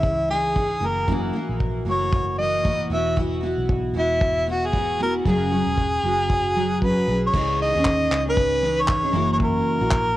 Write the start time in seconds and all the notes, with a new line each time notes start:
Already playing: C#2 E3 C#4 E4 G#4
0.03 kick
0.28 E3 C#4 D#4 G#4
0.55 E3 C#4 D#4 G#4, kick
0.80 F#1 E3 A#3 E4 F#4
0.87 A#4
1.08 F#2 C#3 E3 A#3 E4 F#4, kick
1.33 E3 A#3 E4 F#4
1.49 A#1
1.60 kick
1.85 F#1 E3 A#3 E4 F#4
1.91 C#5
2.13 kick
2.37 E3 A#3 E4 F#4 D#5
2.63 E3 A#3 E4 F#4, kick
2.90 E1 E3 B3 E4 F#4 E5
3.16 E3 B3 E4 F#4, kick
3.41 E3 B3 E4 F#4
3.58 B1
3.69 kick
3.93 E1 E3 B3 E4 F#4
3.99 E4
4.21 kick
4.46 E3 B3 E4 F#4
4.51 F#4
4.66 G#4
4.72 E3 B3 E4 F#4, kick
4.99 E3 B3 E4 F#4 A#4
5.25 F#1 F#2 C#3 F#3 C#4 F#4 G#4, kick
5.51 F#3 C#4 F#4 G#4
5.66 E1
5.78 kick
6.03 F#1 F#3 C#4 F#4 G#4
6.30 kick
6.55 F#3 C#4 F#4 G#4
6.82 F#3 C#4 F#4 G#4 B4, kick
7.06 B1 F#3 C#4 F#4 G#4
7.27 C#5
7.33 C#2 E3 C#4 D#4 G#4, kick, crash
7.62 D#5
7.75 D#2 C#4 D#4 G#4
7.85 kick, clap
8.11 C#2, clap
8.25 C#4 D#4 G#4
8.30 B4
8.37 kick
8.61 E3 C#4 D#4 G#4
8.81 C#5
8.88 kick, clap
9.02 C#4 D#4 G#4
9.12 F#1 F#2 C#3 E3 A#3 E4 F#4
9.33 C#5
9.40 kick
9.45 A#4
9.79 A#1 E3 A#3 E4 F#4
9.91 kick, clap